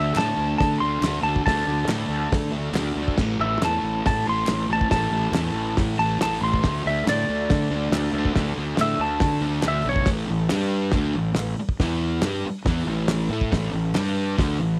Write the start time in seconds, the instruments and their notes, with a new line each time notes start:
Already playing: fingered electric bass D2, distorted electric guitar D3 D4, electric slide guitar E5
0.01 distorted electric guitar A3
0.15 fingered electric bass A2, distorted electric guitar D3 A3, electric slide guitar A5, snare, clap, open hi-hat
0.21 distorted electric guitar D4
0.37 fingered electric bass D2
0.58 fingered electric bass D3, electric slide guitar A5, kick, snare, open hi-hat
0.80 fingered electric bass D2, distorted electric guitar D4, electric slide guitar C6
0.85 distorted electric guitar A3
1.01 fingered electric bass D2, distorted electric guitar D3 A3, snare, clap, open hi-hat
1.08 distorted electric guitar D4
1.23 fingered electric bass D2, distorted electric guitar D4, electric slide guitar A5
1.28 distorted electric guitar A3
1.36 kick
1.46 fingered electric bass D2, distorted electric guitar D3 A3, electric slide guitar A5, kick, snare, open hi-hat
1.51 distorted electric guitar D4
1.67 fingered electric bass D2, distorted electric guitar D4
1.73 distorted electric guitar A3
1.88 fingered electric bass A2, distorted electric guitar D3 A3, snare, clap, open hi-hat
1.93 distorted electric guitar D4
2.09 fingered electric bass D2
2.32 fingered electric bass D3, kick, snare, open hi-hat
2.51 fingered electric bass D2, distorted electric guitar D4
2.58 distorted electric guitar A3
2.73 fingered electric bass D2, distorted electric guitar D3 A3, snare, clap, open hi-hat
2.79 distorted electric guitar D4
2.96 fingered electric bass D2, distorted electric guitar D4
3.03 distorted electric guitar A3
3.08 kick
3.18 fingered electric bass A1, distorted electric guitar A2 E3, kick, snare, crash
3.23 distorted electric guitar A3
3.40 fingered electric bass A1, distorted electric guitar A3, electric slide guitar E5
3.46 distorted electric guitar E3
3.61 fingered electric bass E2, distorted electric guitar A2, electric slide guitar A5, snare, clap, open hi-hat
3.66 distorted electric guitar E3 A3
3.83 fingered electric bass A1
4.05 fingered electric bass A2, electric slide guitar A5, kick, snare, open hi-hat
4.26 fingered electric bass A1, distorted electric guitar A3, electric slide guitar C6
4.32 distorted electric guitar E3
4.47 fingered electric bass A1, distorted electric guitar A2, snare, clap, open hi-hat
4.51 distorted electric guitar E3 A3
4.69 fingered electric bass A1, distorted electric guitar A3, electric slide guitar A5
4.75 distorted electric guitar E3
4.81 kick
4.91 fingered electric bass A1, distorted electric guitar A2 E3, electric slide guitar A5, kick, snare, open hi-hat
4.96 distorted electric guitar A3
5.11 fingered electric bass A1, distorted electric guitar A3
5.17 distorted electric guitar E3
5.32 fingered electric bass E2, distorted electric guitar A2 E3, snare, clap, open hi-hat
5.38 distorted electric guitar A3
5.54 fingered electric bass A1
5.77 fingered electric bass A2, kick, snare, open hi-hat
5.99 fingered electric bass A1, distorted electric guitar A3, electric slide guitar A5
6.05 distorted electric guitar E3
6.19 fingered electric bass A1, distorted electric guitar A2 E3, electric slide guitar A5, snare, clap, open hi-hat
6.23 distorted electric guitar A3
6.41 fingered electric bass A1, distorted electric guitar A3, electric slide guitar C6
6.46 distorted electric guitar E3
6.54 kick
6.64 fingered electric bass D2, distorted electric guitar D3 A3, kick, snare, open hi-hat
6.69 distorted electric guitar D4
6.84 fingered electric bass D2, distorted electric guitar D4, electric slide guitar E5
6.90 distorted electric guitar A3
7.06 fingered electric bass A2, distorted electric guitar D3 A3, electric slide guitar D5, snare, clap, open hi-hat
7.12 distorted electric guitar D4
7.29 fingered electric bass D2
7.50 fingered electric bass D3, kick, snare, open hi-hat
7.70 fingered electric bass D2, distorted electric guitar D4
7.76 distorted electric guitar A3
7.91 fingered electric bass D2, distorted electric guitar D3 A3, snare, clap, open hi-hat
7.96 distorted electric guitar D4
8.13 fingered electric bass D2, distorted electric guitar D4
8.19 distorted electric guitar A3
8.25 kick
8.34 fingered electric bass D2, distorted electric guitar D3 A3, kick, snare, open hi-hat
8.39 distorted electric guitar D4
8.55 fingered electric bass D2, distorted electric guitar D4
8.60 distorted electric guitar A3
8.77 fingered electric bass A2, distorted electric guitar D3 A3, electric slide guitar E5, snare, clap, open hi-hat
8.82 distorted electric guitar D4
8.99 fingered electric bass D2, electric slide guitar A5
9.20 fingered electric bass D3, kick, snare, open hi-hat
9.41 fingered electric bass D2, distorted electric guitar D4
9.47 distorted electric guitar A3
9.62 fingered electric bass D2, distorted electric guitar D3 A3, snare, clap, open hi-hat
9.68 distorted electric guitar D4, electric slide guitar E5
9.85 fingered electric bass B1, distorted electric guitar D4
9.89 distorted electric guitar A3, electric slide guitar C#5
9.96 kick
10.06 fingered electric bass A1, distorted electric guitar A2 E3 A3, kick, snare, open hi-hat
10.29 fingered electric bass A1, distorted electric guitar A2 E3
10.49 fingered electric bass G2, distorted electric guitar G3 D4 G4, snare, clap, open hi-hat
10.92 fingered electric bass D2, distorted electric guitar D3 A3, kick, snare, open hi-hat
10.96 distorted electric guitar D4
11.14 fingered electric bass A1, distorted electric guitar A2 E3
11.35 fingered electric bass A1, distorted electric guitar A2 E3, snare, clap, open hi-hat
11.59 muted fingered electric bass stroke, muted distorted electric guitar stroke
11.69 kick
11.80 fingered electric bass E2, distorted electric guitar E3 B3 E4, kick, snare, open hi-hat
12.22 fingered electric bass G2, distorted electric guitar G3, snare, clap, open hi-hat
12.26 distorted electric guitar D4 G4
12.45 muted fingered electric bass stroke, muted distorted electric guitar stroke
12.65 fingered electric bass E2, distorted electric guitar E3 B3, kick, snare, open hi-hat
12.69 distorted electric guitar E4
12.87 fingered electric bass A1, distorted electric guitar A2 E3 A3
13.08 snare, clap, open hi-hat
13.29 fingered electric bass A2, distorted electric guitar A3 E4 A4
13.41 kick
13.50 fingered electric bass A1, distorted electric guitar A2 E3 A3, kick, snare, open hi-hat
13.72 fingered electric bass A1, distorted electric guitar A2 E3
13.94 fingered electric bass G2, distorted electric guitar G3 D4 G4, snare, clap, open hi-hat
14.37 fingered electric bass D2, distorted electric guitar D3 A3 D4, kick, snare, open hi-hat
14.59 fingered electric bass A1, distorted electric guitar A2 E3